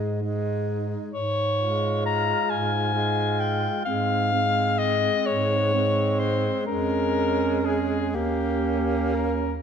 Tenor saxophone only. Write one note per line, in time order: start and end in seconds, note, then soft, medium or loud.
0.00 0.20 G#3 soft
0.23 1.12 G#3 soft
1.62 2.93 G#3 soft
2.94 3.84 G#3 soft
3.86 4.32 G#3 soft
4.33 5.71 G#3 soft
5.74 6.66 G#3 soft
6.67 8.16 G#3 soft
8.15 9.51 A#3 soft